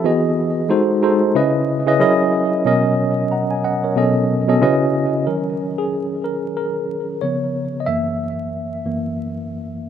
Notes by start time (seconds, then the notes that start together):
0.04 E3 B3 F#4 G#4 D#5
0.69 G#3 D#4 F#4 A4 C5
1.02 G#3 D#4 F#4 A4 C5
1.35 C#3 C#4 E4 B4 D#5
1.86 C#3 C#4 E4 B4 D#5
2.00 F#3 C#4 E4 G#4 A#4 D#5
2.65 B2 F#3 C#4 A#4 D#5
3.31 F#5 A#5
3.51 G#5
3.64 D#5 F#5
3.84 A#4 C#5
3.96 B2 F#3 C#4 A4 D#5
4.48 B2 F#3 C#4 A4 D#5
4.61 C#3 C#4 E4 F#4 B4 D#5
5.27 D#3 F#3 C#4 A#4
5.78 G#4
6.24 A#4
6.57 A#4
7.21 C#3 F3 B3 C#5
7.80 D#5
7.86 F#2 E3 A#3 E5
8.85 F#2 E3 A#3